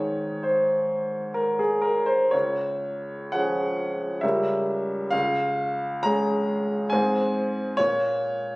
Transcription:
grand piano
Already playing: G#2 D#3 D#4 G#4 C#5
0.43 C5
1.34 A#4
1.59 G#4
1.82 A#4
2.06 C5
2.31 C#2 C#5
3.32 F3 C#4 G#4 F#5
4.21 C#2 G3 C#4 A#4 E5
5.11 C#2 F5
6.03 G#3 C#4 G#4 A#5
6.90 G#2 G#3 C4 G#5
6.94 G#4
7.77 A#2 C#5

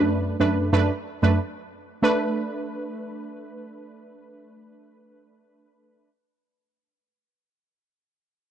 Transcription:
synth stab
Already playing: F#2 A3 D4 B4
0.40 F#2 A3 D4 B4
0.72 F#2 A3 D4 B4
1.22 F#2 A3 D4 B4
2.02 A3 D4 B4

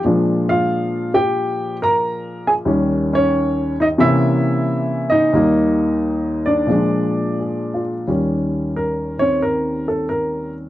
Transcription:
upright piano
0.04 A#2 F3 G#3 D4
0.49 F4 F5
1.14 G4 G5
1.82 A#4 A#5
2.47 G#4 G#5
2.65 D#2 D#3 G3 C#4
3.13 C#4 C#5
3.80 D#4 D#5
3.98 C3 E3 A#3 C#4 E4 E5
5.10 D#4 D#5
5.33 D#2 D#3 G3 A#3
6.46 D4 D5
6.67 A#2 F3 G#3
6.72 D4
7.39 G#4
7.74 F4
8.07 D#2 D#3 G3 C#4
8.76 A#4
9.19 D#3 C4 C#5
9.42 A#4
9.88 A4
10.09 A#4

